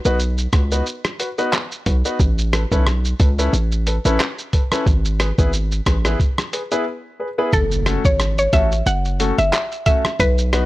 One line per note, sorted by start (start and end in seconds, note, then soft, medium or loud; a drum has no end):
0.05 0.48 B1 medium
0.05 0.17 B3 medium
0.05 0.17 D#4 medium
0.05 0.17 F#4 medium
0.05 0.17 B4 medium
0.05 shaker medium
0.20 shaker medium
0.38 shaker medium
0.53 0.82 C#2 medium
0.53 0.60 F#4 medium
0.53 0.61 B4 medium
0.53 kick medium
0.53 cross-stick medium
0.53 closed hi-hat medium
0.53 shaker medium
0.72 0.83 B3 medium
0.72 0.83 D#4 medium
0.72 0.83 F#4 medium
0.72 0.84 B4 medium
0.72 shaker medium
0.86 shaker medium
1.05 cross-stick loud
1.05 shaker soft
1.20 1.27 F#4 medium
1.20 1.27 B4 medium
1.20 closed hi-hat medium
1.20 shaker medium
1.38 1.50 B3 medium
1.38 1.50 D#4 medium
1.38 1.50 F#4 medium
1.38 1.50 B4 medium
1.38 shaker medium
1.53 cross-stick medium
1.53 clap medium
1.53 shaker medium
1.72 shaker soft
1.86 2.03 B1 medium
1.86 1.94 F#4 medium
1.86 1.94 B4 medium
1.86 kick medium
1.86 closed hi-hat medium
1.86 shaker medium
2.05 2.17 B3 medium
2.05 2.17 D#4 medium
2.05 2.17 F#4 medium
2.05 2.17 B4 medium
2.05 shaker medium
2.20 2.66 A1 loud
2.20 kick loud
2.20 shaker medium
2.38 shaker medium
2.53 2.61 A4 medium
2.53 2.61 B4 medium
2.53 cross-stick loud
2.53 closed hi-hat medium
2.53 shaker medium
2.72 3.14 B1 medium
2.72 2.83 C#4 medium
2.72 2.84 E4 medium
2.72 2.84 A4 medium
2.72 2.84 B4 medium
2.72 kick loud
2.72 shaker medium
2.86 cross-stick medium
2.86 shaker medium
3.05 shaker medium
3.20 3.49 C#2 loud
3.20 3.27 A4 medium
3.20 3.27 B4 medium
3.20 kick medium
3.20 closed hi-hat medium
3.20 shaker soft
3.39 3.50 C#4 medium
3.39 3.50 E4 medium
3.39 3.50 A4 medium
3.39 3.50 B4 medium
3.39 shaker medium
3.53 3.99 A1 loud
3.53 shaker medium
3.72 shaker soft
3.87 3.94 A4 medium
3.87 3.94 B4 medium
3.87 closed hi-hat medium
3.87 shaker medium
4.05 4.18 A1 medium
4.05 4.17 C#4 medium
4.05 4.17 E4 medium
4.05 4.17 A4 medium
4.05 4.17 B4 medium
4.05 shaker medium
4.20 cross-stick loud
4.20 clap medium
4.20 shaker medium
4.39 shaker soft
4.53 4.61 A4 medium
4.53 4.61 B4 medium
4.53 kick medium
4.53 closed hi-hat medium
4.53 shaker medium
4.72 4.83 C#4 medium
4.72 4.84 E4 medium
4.72 4.84 A4 medium
4.72 4.84 B4 medium
4.72 cross-stick medium
4.72 shaker medium
4.86 5.32 G#1 loud
4.86 kick loud
4.86 shaker medium
5.05 shaker medium
5.20 5.27 G#4 medium
5.20 5.27 B4 medium
5.20 cross-stick loud
5.20 closed hi-hat medium
5.20 shaker medium
5.38 5.81 G#1 loud
5.38 5.50 B3 medium
5.38 5.50 E4 medium
5.38 5.50 G#4 medium
5.38 5.50 B4 medium
5.38 kick loud
5.38 shaker medium
5.53 shaker medium
5.72 shaker medium
5.86 6.16 A1 loud
5.86 5.94 G#4 medium
5.86 5.94 B4 medium
5.86 kick medium
5.86 cross-stick medium
5.86 closed hi-hat medium
5.86 shaker medium
6.05 6.17 B3 medium
6.05 6.17 E4 medium
6.05 6.17 G#4 medium
6.05 6.17 B4 medium
6.05 cross-stick medium
6.05 shaker medium
6.20 kick medium
6.20 shaker medium
6.38 cross-stick medium
6.38 shaker soft
6.53 6.60 G#4 medium
6.53 6.61 B4 medium
6.53 closed hi-hat medium
6.53 shaker medium
6.72 6.83 B3 medium
6.72 6.83 E4 medium
6.72 6.83 G#4 medium
6.72 6.84 B4 medium
6.72 shaker medium
7.20 7.27 G#4 medium
7.20 7.27 B4 medium
7.38 7.50 B3 medium
7.38 7.50 E4 medium
7.38 7.50 G#4 medium
7.38 7.50 B4 medium
7.53 7.99 F#1 loud
7.53 7.67 A4 loud
7.53 kick loud
7.53 impact medium
7.53 shaker medium
7.72 shaker medium
7.86 8.01 A3 medium
7.86 8.01 C#4 medium
7.86 8.01 F#4 medium
7.86 8.01 A4 medium
7.86 cross-stick loud
7.86 closed hi-hat medium
7.86 shaker medium
8.05 8.48 G#1 medium
8.05 8.16 C#5 medium
8.05 kick loud
8.05 shaker medium
8.20 cross-stick medium
8.20 shaker medium
8.38 8.50 C#5 medium
8.38 shaker medium
8.53 8.83 A1 medium
8.53 8.68 A3 medium
8.53 8.68 C#4 medium
8.53 8.68 F#4 medium
8.53 8.68 A4 medium
8.53 8.68 E5 medium
8.53 kick medium
8.53 closed hi-hat medium
8.53 shaker medium
8.72 shaker medium
8.86 9.32 F#1 loud
8.86 9.01 F#5 medium
8.86 shaker medium
9.05 shaker soft
9.20 9.35 A3 medium
9.20 9.35 C#4 medium
9.20 9.35 F#4 medium
9.20 9.35 A4 medium
9.20 closed hi-hat medium
9.20 shaker medium
9.38 9.51 F#1 medium
9.38 9.50 E5 medium
9.38 shaker medium
9.53 cross-stick medium
9.53 clap medium
9.53 shaker medium
9.72 shaker soft
9.86 10.01 A3 medium
9.86 10.01 C#4 medium
9.86 10.01 F#4 medium
9.86 10.01 A4 medium
9.86 10.00 E5 medium
9.86 kick loud
9.86 closed hi-hat medium
9.86 shaker medium
10.05 cross-stick medium
10.05 shaker medium
10.20 10.66 B1 loud
10.20 10.34 B4 loud
10.20 kick loud
10.20 shaker medium
10.38 shaker medium
10.53 10.66 B3 medium
10.53 10.66 D#4 medium
10.53 10.66 F#4 medium
10.53 10.66 B4 medium
10.53 cross-stick loud
10.53 closed hi-hat medium
10.53 shaker medium